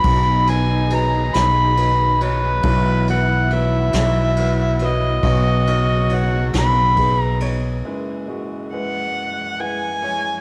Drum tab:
RD |xxxxxx|xxxxxx|xxxxxx|------|
SD |---o--|---o--|---o--|------|
BD |o-----|o-----|o---o-|------|